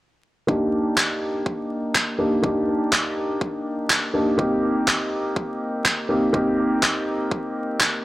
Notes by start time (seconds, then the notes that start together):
0.47 A#3 D4 D#4 G4, kick
0.97 kick, clap
1.46 kick
1.95 kick, clap
2.19 A#3 D4 D#4 G4
2.42 A#3 D4 D#4 G4, kick
2.92 kick, clap
3.41 kick
3.90 kick, clap
4.14 A#3 D4 D#4 G4
4.38 A#3 C4 D#4 G4, kick
4.88 kick, clap
5.36 kick
5.85 kick, clap
6.09 A#3 C4 D#4 G4
6.33 A#3 C4 D#4 G4, kick
6.83 kick, clap
7.31 kick
7.80 kick, clap